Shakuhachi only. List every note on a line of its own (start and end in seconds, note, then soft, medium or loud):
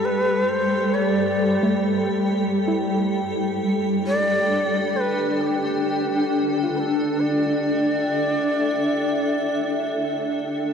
0.05 0.50 B4 medium
0.49 0.96 C5 medium
0.95 1.84 D5 medium
4.07 4.98 D5 loud
4.96 5.43 B4 medium
4.96 5.01 C5 medium
5.41 6.77 G4 medium
6.76 7.22 A4 medium
6.76 6.81 B4 medium
7.20 10.34 D5 medium